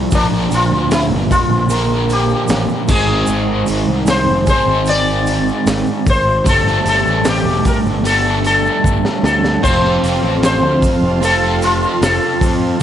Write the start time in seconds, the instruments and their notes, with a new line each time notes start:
Already playing: overdriven electric guitar F3 C4 F4 A4
0.11 picked electric bass A#1, overdriven electric guitar A#2 D3 F3 A#3 D4 A#4, sitar D4, kick, open hi-hat, shaker
0.51 picked electric bass A#1, sitar F4, open hi-hat, shaker
0.71 picked electric bass D2
0.91 sitar E4, snare, open hi-hat, shaker
1.10 picked electric bass G1
1.31 sitar F4, kick, open hi-hat, shaker
1.50 picked electric bass A#1
1.70 overdriven electric guitar A#2 D3 F3 A#3 D4 A#4, open hi-hat, shaker
2.10 sitar G4, open hi-hat, shaker
2.29 shaker
2.48 picked electric bass A1, snare, open hi-hat, shaker
2.69 shaker
2.88 picked electric bass G#1, overdriven electric guitar G#2 D#3 G#3 C4 D#4 G#4, sitar G#4, kick, crash, shaker
3.27 picked electric bass G#1, shaker
3.67 picked electric bass G#1, open hi-hat, shaker
3.87 picked electric bass C2
4.06 sitar C5, snare, open hi-hat, shaker
4.27 picked electric bass F1
4.47 overdriven electric guitar G#2 D#3 G#3 C4 D#4 G#4, sitar C5, kick, open hi-hat, shaker
4.66 picked electric bass G#1
4.86 sitar D5, open hi-hat, shaker
5.26 open hi-hat, shaker
5.48 shaker
5.66 picked electric bass G#1, snare, open hi-hat, shaker
5.86 shaker
6.07 picked electric bass G#1, sitar C5, kick, open hi-hat, shaker
6.45 picked electric bass G1, overdriven electric guitar G3 A3 D4 A4, kick, open hi-hat, shaker
6.49 sitar A4
6.67 snare, shaker
6.86 picked electric bass G1, sitar A4, open hi-hat, shaker
7.06 picked electric bass A1, shaker
7.25 snare, open hi-hat, shaker
7.29 sitar G4
7.44 picked electric bass E1
7.65 sitar A#4, kick, open hi-hat, shaker
7.85 picked electric bass G1, shaker
8.04 overdriven electric guitar G3 A3 D4 A4, sitar A4, open hi-hat, shaker
8.26 shaker
8.44 sitar A4, open hi-hat, shaker
8.66 shaker
8.84 picked electric bass G1, kick, shaker
9.05 snare, shaker
9.23 picked electric bass D2, sitar A4, snare, shaker
9.44 snare, shaker
9.62 picked electric bass F1, overdriven electric guitar F3 C4 F4 A4, sitar C5, string machine F5 A5 C6, kick, crash, shaker
9.84 snare
10.03 picked electric bass F1, open hi-hat, shaker
10.23 picked electric bass A1
10.43 sitar C5, snare, open hi-hat, shaker
10.63 picked electric bass D2
10.82 kick, open hi-hat, shaker
11.01 picked electric bass F1
11.22 overdriven electric guitar F3 C4 F4 A4, sitar A4, open hi-hat, shaker
11.62 sitar F4, open hi-hat, shaker
11.82 shaker
12.01 picked electric bass F1, sitar A4, snare, open hi-hat, shaker
12.22 shaker
12.41 picked electric bass F2, kick, open hi-hat, shaker